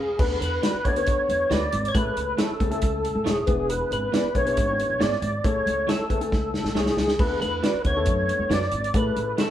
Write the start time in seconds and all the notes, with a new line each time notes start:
Already playing: G#4
0.19 D2 B3 D4 F#4 A4 B4, kick, crash
0.41 E2 B4, closed hi-hat
0.62 A3 D4 F#4 B4, snare, closed hi-hat
0.75 muted upright bass stroke
0.85 D2 B3 D4 F#4 A4 C#5 D5, kick, closed hi-hat
0.96 B3 D4 F#4 A4 B4, closed hi-hat
1.06 kick, closed hi-hat
1.18 muted upright bass stroke
1.29 E2, closed hi-hat
1.50 D2 A3 D4 F#4 B4 D5, snare, closed hi-hat
1.72 G#1, closed hi-hat
1.85 C#5, closed hi-hat
1.95 A1 A3 C#4 E4 G#4 A4 B4, kick, closed hi-hat
2.17 C#2, closed hi-hat
2.38 A3 E4 G#4 A4 C#5, snare, closed hi-hat
2.50 muted upright bass stroke
2.60 C#2 A3 C#4 E4 G#4 A4, kick, closed hi-hat
2.71 A3 C#4 E4 A4 G#5, closed hi-hat
2.81 C#2, kick, closed hi-hat
3.05 closed hi-hat
3.15 A1
3.24 D#1 A3 E4 G#4 C#5, snare, closed hi-hat
3.47 E1 B3 D4 E4 G#4 B4, kick, closed hi-hat
3.70 B4, closed hi-hat
3.91 G#1 B4, closed hi-hat
4.12 B3 E4 G#4 D5, snare, closed hi-hat
4.24 muted upright bass stroke
4.35 B1 B3 D4 E4 G#4 B4 C#5, kick, closed hi-hat
4.45 B3 D4 E4 G#4 B4, closed hi-hat
4.57 G#1, kick, closed hi-hat
4.79 closed hi-hat
4.90 B1
5.00 G#1 B3 E4 G#4 D5, snare, closed hi-hat
5.12 snare
5.22 G#1, closed hi-hat
5.44 A1 A3 C#4 E4 G#4 A4 C#5, kick, closed hi-hat
5.66 C#2, closed hi-hat
5.87 A3 E4 G#4 A4 C#5, snare, closed hi-hat
5.99 muted upright bass stroke
6.09 C#2 A3 C#4 E4 G#4 B4, kick, closed hi-hat
6.21 A3 C#4 E4 A4 G#5, closed hi-hat
6.32 C#2, kick, snare
6.54 snare
6.64 A1, snare
6.75 C2 A3 E4 G#4 C#5, snare
6.86 snare
6.97 C#2, snare
7.08 snare
7.19 D2 A3 B3 D4 F4 A4 B4, kick, crash
7.24 F#4
7.41 E2 B4, closed hi-hat
7.63 D4 F#4 B4 D5, snare, closed hi-hat
7.74 muted upright bass stroke
7.84 D2 A3 B3 D4 F#4 B4 C#5, kick, closed hi-hat
7.96 A3 B3 D4 F#4 A4
8.06 F#2, kick, closed hi-hat
8.29 closed hi-hat
8.39 E2
8.50 F#2 D4 F#4 B4 D5, snare, closed hi-hat
8.62 snare
8.71 G#1, closed hi-hat
8.84 closed hi-hat
8.94 A1 A3 C#4 E4 G#4 A4 B4, kick, closed hi-hat
9.16 A1, closed hi-hat
9.38 A3 E4 G#4 A4 C#5, snare, closed hi-hat